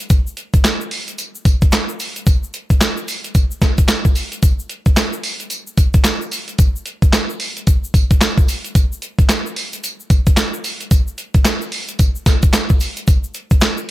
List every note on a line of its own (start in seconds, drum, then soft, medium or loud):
0.10 kick loud
0.10 closed hi-hat medium
0.10 tambourine medium
0.10 shaker medium
0.27 shaker soft
0.37 closed hi-hat medium
0.37 shaker medium
0.54 kick loud
0.54 closed hi-hat medium
0.54 shaker soft
0.64 snare loud
0.64 clap medium
0.64 closed hi-hat medium
0.64 tambourine medium
0.64 shaker medium
0.81 shaker soft
0.91 open hi-hat medium
0.91 tambourine medium
1.08 closed hi-hat medium
1.08 shaker medium
1.18 closed hi-hat medium
1.18 tambourine medium
1.18 shaker medium
1.35 shaker medium
1.45 kick loud
1.45 closed hi-hat medium
1.45 tambourine medium
1.45 shaker medium
1.62 kick loud
1.62 closed hi-hat medium
1.62 shaker medium
1.72 snare loud
1.72 clap loud
1.72 closed hi-hat medium
1.72 tambourine medium
1.72 shaker medium
1.89 shaker soft
2.00 open hi-hat medium
2.00 tambourine medium
2.00 shaker medium
2.16 closed hi-hat medium
2.16 shaker soft
2.26 kick loud
2.26 closed hi-hat medium
2.26 tambourine medium
2.26 shaker medium
2.43 shaker soft
2.54 closed hi-hat medium
2.54 shaker soft
2.70 kick medium
2.70 closed hi-hat soft
2.70 shaker soft
2.81 snare loud
2.81 clap loud
2.81 closed hi-hat medium
2.81 tambourine medium
2.81 shaker medium
2.97 shaker soft
3.08 open hi-hat medium
3.08 tambourine medium
3.08 shaker medium
3.24 closed hi-hat medium
3.24 shaker medium
3.35 kick loud
3.35 closed hi-hat medium
3.35 tambourine medium
3.35 shaker medium
3.51 shaker medium
3.62 kick loud
3.62 snare medium
3.62 closed hi-hat medium
3.62 tambourine medium
3.62 shaker medium
3.78 kick loud
3.78 closed hi-hat medium
3.78 shaker medium
3.88 snare loud
3.88 clap medium
3.88 closed hi-hat medium
3.88 tambourine loud
3.88 shaker medium
4.05 kick medium
4.05 shaker medium
4.15 open hi-hat medium
4.15 tambourine medium
4.15 shaker medium
4.32 closed hi-hat medium
4.32 shaker soft
4.43 kick loud
4.43 closed hi-hat medium
4.43 tambourine medium
4.43 shaker medium
4.59 shaker medium
4.69 closed hi-hat medium
4.69 shaker medium
4.86 kick medium
4.86 closed hi-hat medium
4.86 shaker soft
4.96 snare loud
4.96 clap medium
4.96 closed hi-hat medium
4.96 tambourine loud
4.96 shaker medium
5.13 shaker medium
5.23 open hi-hat medium
5.23 tambourine medium
5.40 closed hi-hat medium
5.40 shaker medium
5.50 closed hi-hat medium
5.50 tambourine medium
5.50 shaker medium
5.67 shaker medium
5.77 kick loud
5.77 closed hi-hat medium
5.77 tambourine medium
5.77 shaker medium
5.94 kick loud
5.94 closed hi-hat medium
5.94 shaker medium
6.04 snare loud
6.04 clap medium
6.04 closed hi-hat medium
6.04 tambourine loud
6.04 shaker medium
6.22 shaker medium
6.31 open hi-hat medium
6.31 tambourine medium
6.31 shaker medium
6.48 closed hi-hat medium
6.48 shaker soft
6.58 kick loud
6.58 closed hi-hat medium
6.58 tambourine medium
6.58 shaker medium
6.76 shaker soft
6.86 closed hi-hat medium
6.86 shaker medium
7.02 kick loud
7.02 closed hi-hat medium
7.02 shaker soft
7.12 snare loud
7.12 clap loud
7.12 closed hi-hat medium
7.12 tambourine medium
7.12 shaker medium
7.30 shaker medium
7.40 open hi-hat medium
7.40 tambourine medium
7.57 closed hi-hat medium
7.57 shaker medium
7.67 kick loud
7.67 closed hi-hat medium
7.67 tambourine medium
7.67 shaker medium
7.84 shaker medium
7.94 kick loud
7.94 closed hi-hat medium
7.94 tambourine medium
7.94 shaker medium
8.11 kick loud
8.11 closed hi-hat medium
8.11 shaker medium
8.21 snare loud
8.21 clap medium
8.21 closed hi-hat medium
8.21 tambourine loud
8.21 shaker medium
8.38 kick loud
8.38 shaker medium
8.48 open hi-hat medium
8.48 tambourine medium
8.48 shaker medium
8.64 closed hi-hat medium
8.64 shaker soft
8.75 kick loud
8.75 closed hi-hat medium
8.75 tambourine medium
8.75 shaker medium
8.92 shaker soft
9.02 closed hi-hat medium
9.02 shaker soft
9.19 kick medium
9.19 closed hi-hat medium
9.19 shaker soft
9.29 snare loud
9.29 clap loud
9.29 closed hi-hat medium
9.29 tambourine medium
9.29 shaker medium
9.46 shaker soft
9.56 open hi-hat medium
9.56 tambourine medium
9.73 closed hi-hat medium
9.73 shaker medium
9.84 closed hi-hat medium
9.84 tambourine medium
9.84 shaker medium
10.00 shaker soft
10.10 kick loud
10.10 closed hi-hat medium
10.10 tambourine medium
10.10 shaker soft
10.27 kick loud
10.27 closed hi-hat medium
10.27 shaker medium
10.37 snare loud
10.37 clap medium
10.37 closed hi-hat medium
10.37 tambourine medium
10.37 shaker medium
10.54 shaker medium
10.64 open hi-hat medium
10.64 tambourine medium
10.64 shaker medium
10.81 closed hi-hat medium
10.81 shaker soft
10.91 kick loud
10.91 closed hi-hat medium
10.91 tambourine medium
10.91 shaker medium
11.08 shaker soft
11.18 closed hi-hat medium
11.18 shaker soft
11.34 kick loud
11.34 closed hi-hat medium
11.34 shaker soft
11.45 snare loud
11.45 clap medium
11.45 closed hi-hat medium
11.45 tambourine loud
11.45 shaker medium
11.62 shaker soft
11.72 open hi-hat medium
11.72 tambourine medium
11.88 closed hi-hat medium
11.88 shaker medium
11.99 kick medium
11.99 closed hi-hat medium
11.99 tambourine medium
11.99 shaker medium
12.15 shaker medium
12.26 kick loud
12.26 snare medium
12.26 closed hi-hat medium
12.26 tambourine medium
12.26 shaker medium
12.42 kick loud
12.42 closed hi-hat medium
12.42 shaker medium
12.53 snare loud
12.53 clap medium
12.53 closed hi-hat medium
12.53 tambourine loud
12.53 shaker medium
12.70 kick medium
12.70 shaker soft
12.80 open hi-hat medium
12.80 tambourine medium
12.80 shaker medium
12.97 closed hi-hat medium
12.97 shaker soft
13.07 kick loud
13.07 closed hi-hat medium
13.07 tambourine medium
13.07 shaker medium
13.24 shaker soft
13.34 closed hi-hat medium
13.34 shaker medium
13.51 kick loud
13.51 closed hi-hat medium
13.51 shaker soft
13.61 snare loud
13.61 clap loud
13.61 closed hi-hat medium
13.61 tambourine medium
13.61 shaker medium
13.78 shaker soft